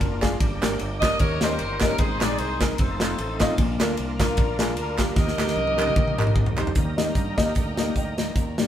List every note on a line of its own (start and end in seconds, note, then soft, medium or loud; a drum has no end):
0.00 0.34 F#1 medium
0.00 0.19 A#2 medium
0.00 0.39 A#3 medium
0.00 0.37 D4 medium
0.00 0.39 D4 medium
0.00 0.37 F4 medium
0.00 0.39 F4 medium
0.00 0.22 A#4 medium
0.00 kick medium
0.00 ride medium
0.21 0.34 D4 medium
0.21 0.34 F4 medium
0.21 0.34 G#4 loud
0.21 kick medium
0.21 snare loud
0.21 clap medium
0.21 ride soft
0.40 0.59 G1 loud
0.40 0.98 G2 medium
0.40 1.18 A#3 medium
0.40 1.18 D4 medium
0.40 1.18 G4 medium
0.40 kick loud
0.40 ride medium
0.61 0.78 G#1 loud
0.61 0.73 D4 medium
0.61 0.74 G4 medium
0.61 0.74 A#4 medium
0.61 snare loud
0.61 clap loud
0.61 ride medium
0.79 1.14 G1 medium
0.79 ride medium
1.00 1.14 D4 medium
1.00 1.14 G4 medium
1.00 1.15 A#4 medium
1.00 1.18 D#5 loud
1.00 kick medium
1.00 snare loud
1.00 clap medium
1.00 ride medium
1.19 1.61 D#2 loud
1.19 1.78 D#3 medium
1.19 1.97 G3 medium
1.19 1.97 A#3 medium
1.19 1.97 C#4 medium
1.19 1.97 D#4 medium
1.19 1.41 G4 medium
1.19 1.97 A#4 medium
1.19 1.79 A#4 medium
1.19 1.42 C#5 loud
1.19 kick loud
1.19 ride medium
1.41 1.54 C#4 medium
1.41 1.54 D#4 medium
1.41 1.95 G4 medium
1.41 1.54 G4 medium
1.41 1.54 A#4 medium
1.41 1.82 C5 loud
1.41 1.54 D#5 medium
1.41 snare loud
1.41 clap medium
1.41 ride medium
1.59 1.93 G1 medium
1.59 ride medium
1.80 1.94 C#4 medium
1.80 1.94 D#4 medium
1.80 1.93 G4 medium
1.80 1.99 A#4 loud
1.80 1.94 A#4 medium
1.80 1.94 D#5 medium
1.80 kick medium
1.80 snare loud
1.80 clap medium
1.80 ride soft
1.98 2.22 G#1 medium
1.98 2.57 G#2 medium
1.98 2.77 C4 medium
1.98 2.77 D#4 medium
1.98 2.75 D#4 medium
1.98 2.77 G#4 medium
1.98 2.75 G#4 medium
1.98 2.21 C5 loud
1.98 kick loud
1.98 ride medium
2.20 2.36 A#1 loud
2.20 2.33 D#4 medium
2.20 2.33 G#4 medium
2.20 2.33 C5 medium
2.20 2.38 D5 loud
2.20 snare loud
2.20 clap loud
2.20 ride medium
2.38 2.73 C2 loud
2.38 2.61 C5 loud
2.38 ride medium
2.61 2.72 D#4 medium
2.61 2.73 G#4 medium
2.61 2.73 A#4 medium
2.61 2.80 A#4 medium
2.61 kick medium
2.61 snare loud
2.61 clap medium
2.61 ride medium
2.78 3.13 F1 loud
2.78 3.57 F3 medium
2.78 3.57 A3 medium
2.78 3.57 C4 medium
2.78 3.54 D#4 medium
2.78 3.57 D#4 medium
2.78 2.85 G#4 medium
2.78 3.54 A4 medium
2.78 3.41 C5 medium
2.78 kick loud
2.78 ride medium
2.85 3.60 A4 medium
3.00 3.12 A3 medium
3.00 3.12 C4 medium
3.00 3.12 D#4 medium
3.00 3.12 F4 medium
3.00 3.12 C5 medium
3.00 snare loud
3.00 clap medium
3.00 ride medium
3.18 3.52 A1 medium
3.18 ride medium
3.40 3.52 A3 medium
3.40 3.52 C4 medium
3.40 3.52 D#4 medium
3.40 3.52 F4 medium
3.40 3.52 D#5 loud
3.40 kick medium
3.40 snare loud
3.40 clap medium
3.40 ride medium
3.58 3.77 A#1 loud
3.58 4.16 A#2 medium
3.58 5.14 A#3 medium
3.58 5.14 D4 medium
3.58 5.14 F4 medium
3.58 kick loud
3.58 ride medium
3.80 3.96 D2 loud
3.80 3.92 D4 medium
3.80 3.92 F4 medium
3.80 3.92 A#4 medium
3.80 snare loud
3.80 clap loud
3.80 ride medium
3.97 4.38 C2 medium
3.97 ride medium
4.19 4.31 D4 medium
4.19 4.76 D4 medium
4.19 4.31 F4 medium
4.19 4.76 F4 medium
4.19 4.73 A#4 medium
4.19 4.32 A#4 medium
4.19 kick loud
4.19 snare loud
4.19 clap medium
4.19 ride medium
4.37 4.78 A#1 medium
4.37 kick loud
4.37 ride medium
4.59 4.71 D4 medium
4.59 4.71 F4 medium
4.59 4.71 G#4 medium
4.59 snare loud
4.59 clap medium
4.59 ride medium
4.77 5.11 D2 medium
4.77 5.14 D4 medium
4.77 5.14 F4 medium
4.77 5.14 A#4 medium
4.77 ride medium
4.98 5.11 D4 medium
4.98 5.11 F4 medium
4.98 5.11 G4 medium
4.98 kick medium
4.98 snare loud
4.98 clap medium
4.98 ride medium
5.16 5.36 D#2 loud
5.16 5.74 D#3 medium
5.16 6.73 A#3 medium
5.16 6.73 D#4 medium
5.16 6.54 G4 medium
5.16 6.73 G4 medium
5.16 6.54 A#4 medium
5.16 6.58 D#5 loud
5.16 kick loud
5.16 snare medium
5.28 snare medium
5.38 5.53 D2 medium
5.38 5.50 D#4 medium
5.38 5.51 G4 medium
5.38 5.51 A#4 medium
5.38 snare medium
5.38 clap loud
5.48 snare medium
5.56 5.90 C2 medium
5.56 high tom medium
5.67 high tom medium
5.77 5.89 D#4 medium
5.77 5.90 G4 medium
5.77 5.90 A#4 loud
5.77 clap medium
5.77 high tom medium
5.87 mid tom medium
5.96 6.30 A#1 medium
5.96 kick loud
5.96 mid tom medium
6.08 mid tom medium
6.18 6.30 D#4 medium
6.18 6.30 G4 medium
6.18 6.30 A#4 medium
6.18 clap medium
6.18 mid tom loud
6.27 mid tom medium
6.35 6.70 C2 loud
6.35 kick medium
6.35 mid tom medium
6.46 floor tom medium
6.57 6.69 D#4 medium
6.57 6.69 G4 medium
6.57 6.70 C5 loud
6.57 clap medium
6.57 floor tom loud
6.67 floor tom loud
6.75 7.10 D#2 medium
6.75 7.35 D#3 medium
6.75 8.33 G3 medium
6.75 8.33 A#3 medium
6.75 8.33 D#4 medium
6.75 8.33 A#4 medium
6.75 8.35 D#5 medium
6.75 8.33 G5 medium
6.75 8.33 A#5 medium
6.75 kick loud
6.75 closed hi-hat loud
6.97 7.09 A#3 medium
6.97 7.09 D#4 medium
6.97 7.10 G4 medium
6.97 7.10 D#5 medium
6.97 snare loud
6.97 closed hi-hat medium
7.15 7.34 G2 medium
7.15 kick medium
7.15 closed hi-hat medium
7.37 7.53 D#2 medium
7.37 7.49 A#3 medium
7.37 7.49 D#4 medium
7.37 7.49 G4 medium
7.37 7.50 D#5 loud
7.37 kick medium
7.37 snare loud
7.37 closed hi-hat medium
7.55 7.90 D2 medium
7.55 kick loud
7.55 closed hi-hat medium
7.77 7.90 A#3 medium
7.77 7.90 D#4 medium
7.77 7.90 G4 medium
7.77 7.90 D#5 medium
7.77 snare loud
7.77 closed hi-hat medium
7.96 8.30 D2 medium
7.96 8.15 D#5 medium
7.96 8.17 G5 medium
7.96 kick medium
7.96 closed hi-hat medium
8.17 8.56 C5 medium
8.17 8.55 D#5 medium
8.17 snare loud
8.17 closed hi-hat medium
8.35 8.54 D#2 medium
8.35 8.67 D#3 medium
8.35 8.67 A#4 medium
8.35 8.67 D5 medium
8.35 8.67 G5 medium
8.35 8.67 A#5 medium
8.35 kick loud
8.35 closed hi-hat medium
8.58 8.67 G2 medium
8.58 8.67 A#3 medium
8.58 8.67 D#4 medium
8.58 8.67 G4 medium
8.58 8.67 D5 medium
8.58 snare loud
8.58 closed hi-hat medium